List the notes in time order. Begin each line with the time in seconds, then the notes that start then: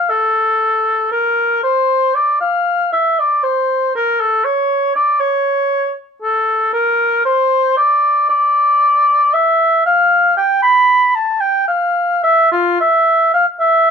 Already playing: F5
0.10 A4
1.11 A#4
1.63 C5
2.15 D5
2.41 F5
2.92 E5
3.19 D5
3.43 C5
3.95 A#4
4.20 A4
4.44 C#5
4.95 D5
5.20 C#5
6.22 A4
6.73 A#4
7.25 C5
7.77 D5
8.29 D5
9.34 E5
9.86 F5
10.37 G5
10.62 B5
11.15 A5
11.41 G5
11.68 F5
12.23 E5
12.52 F4
12.81 E5
13.34 F5
13.60 E5